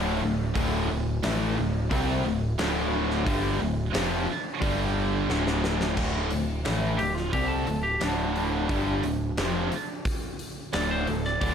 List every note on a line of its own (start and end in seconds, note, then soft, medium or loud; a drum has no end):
0.00 0.20 D1 medium
0.00 0.20 D2 medium
0.00 0.20 A2 medium
0.00 0.20 D3 loud
0.22 0.54 D1 medium
0.22 0.49 D2 medium
0.22 0.49 A2 medium
0.55 0.87 D1 medium
0.55 0.88 D2 medium
0.55 0.88 A2 loud
0.55 0.89 D3 loud
0.55 kick loud
0.55 open hi-hat medium
0.89 1.22 D1 medium
0.89 1.16 D2 medium
0.89 1.17 A2 medium
1.23 1.56 A1 medium
1.23 1.56 A2 medium
1.23 1.56 E3 loud
1.23 1.56 A3 loud
1.23 snare loud
1.23 open hi-hat medium
1.56 1.90 D1 medium
1.56 1.84 D2 medium
1.56 1.84 A2 medium
1.89 2.23 C2 medium
1.89 2.23 C3 medium
1.89 2.24 G3 medium
1.89 2.24 C4 loud
1.89 kick loud
1.89 open hi-hat medium
2.25 2.57 D1 medium
2.25 2.52 D2 medium
2.25 2.52 A2 medium
2.58 3.23 D1 medium
2.58 3.25 D2 loud
2.58 3.25 A2 loud
2.58 3.25 D3 medium
2.58 snare loud
2.58 open hi-hat medium
3.11 snare soft
3.25 3.58 G1 medium
3.25 3.59 G2 medium
3.25 3.59 D3 loud
3.25 3.59 G3 loud
3.25 kick loud
3.25 open hi-hat medium
3.59 3.92 D1 medium
3.59 3.87 D2 medium
3.59 3.87 A2 medium
3.93 4.26 F1 medium
3.93 4.27 F2 medium
3.93 4.27 C3 medium
3.93 4.27 F3 loud
3.93 snare loud
3.93 open hi-hat medium
4.61 5.26 G1 medium
4.61 5.28 G2 medium
4.61 5.28 D3 medium
4.61 5.29 G3 loud
4.61 kick loud
4.61 open hi-hat medium
5.29 5.94 D1 medium
5.29 5.96 D2 medium
5.29 5.96 A2 medium
5.29 5.97 D3 loud
5.29 snare medium
5.47 snare medium
5.64 snare medium
5.81 snare medium
5.97 6.29 D1 medium
5.97 6.30 D2 medium
5.97 6.31 A2 medium
5.97 6.31 D3 medium
5.97 kick loud
5.97 crash loud
6.31 6.63 D1 medium
6.31 6.59 D2 medium
6.31 6.59 A2 medium
6.31 open hi-hat medium
6.65 6.97 A1 medium
6.65 6.98 A2 medium
6.65 6.98 E3 medium
6.65 6.99 A3 medium
6.65 snare loud
6.65 open hi-hat medium
6.98 7.32 D1 medium
6.98 7.26 D2 medium
6.98 7.26 A2 medium
6.98 7.14 G4 medium
6.98 open hi-hat medium
7.14 7.32 F4 medium
7.14 snare soft
7.33 7.65 C2 medium
7.33 7.66 C3 medium
7.33 7.67 G3 medium
7.33 7.67 C4 loud
7.33 7.50 G4 medium
7.33 kick loud
7.33 open hi-hat medium
7.48 7.82 A4 medium
7.67 7.99 D1 medium
7.67 7.95 D2 medium
7.67 7.95 A2 medium
7.67 open hi-hat medium
7.83 8.00 G4 medium
8.01 8.65 D1 medium
8.01 8.68 D2 medium
8.01 8.68 A2 medium
8.01 8.69 D3 loud
8.01 10.02 D4 loud
8.01 snare loud
8.01 open hi-hat medium
8.36 open hi-hat soft
8.69 9.01 G1 medium
8.69 9.02 G2 medium
8.69 9.03 D3 medium
8.69 9.03 G3 medium
8.69 kick loud
8.69 open hi-hat medium
9.03 9.35 D1 medium
9.03 9.31 D2 medium
9.03 9.31 A2 medium
9.03 open hi-hat medium
9.38 9.69 F1 medium
9.38 9.71 F2 medium
9.38 9.71 C3 loud
9.38 9.71 F3 medium
9.38 snare loud
9.38 open hi-hat medium
9.72 open hi-hat medium
10.05 kick loud
10.05 open hi-hat medium
10.39 open hi-hat medium
10.73 11.05 D1 medium
10.73 11.06 D2 medium
10.73 11.06 A2 medium
10.73 11.07 D3 loud
10.73 10.90 D5 loud
10.73 snare loud
10.73 open hi-hat medium
10.91 11.08 C5 medium
11.07 11.40 D1 medium
11.07 11.35 D2 medium
11.07 11.35 A2 medium
11.07 11.24 A4 medium
11.07 open hi-hat medium
11.25 11.40 D5 medium
11.25 snare soft
11.40 11.54 D1 medium
11.40 11.54 D2 medium
11.40 11.54 A2 medium
11.40 11.54 D3 medium
11.40 11.54 D5 medium
11.40 kick loud
11.40 open hi-hat medium